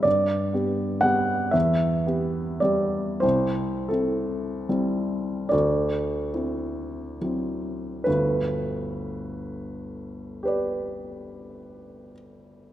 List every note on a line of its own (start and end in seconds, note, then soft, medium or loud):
0.03 0.52 G2 soft
0.03 1.03 D5 medium
0.53 1.00 B3 soft
0.53 1.00 G4 soft
1.01 1.50 G3 soft
1.01 1.50 B3 soft
1.01 1.50 G4 soft
1.01 1.53 F#5 medium
1.51 2.05 E2 soft
1.51 2.62 E5 medium
2.07 2.59 B3 soft
2.07 2.59 G4 soft
2.60 3.18 G3 soft
2.60 3.19 B3 soft
2.60 3.19 G4 soft
2.60 3.21 D5 medium
3.20 3.89 C2 soft
3.20 3.89 C5 medium
3.89 4.66 C4 soft
3.89 4.66 E4 soft
3.89 5.50 A4 medium
4.69 5.47 G3 soft
4.69 5.48 C4 soft
4.69 5.48 E4 soft
5.49 6.31 D2 medium
5.49 8.04 D5 medium
6.34 7.17 C4 soft
6.34 7.17 E4 soft
7.21 8.02 F#3 soft
7.21 8.02 C4 soft
7.21 8.02 E4 soft
8.04 12.12 G1 soft
8.04 12.11 D2 soft
8.04 10.44 B4 soft
10.43 12.73 G4 soft
10.43 12.73 B4 soft
10.48 12.73 D5 soft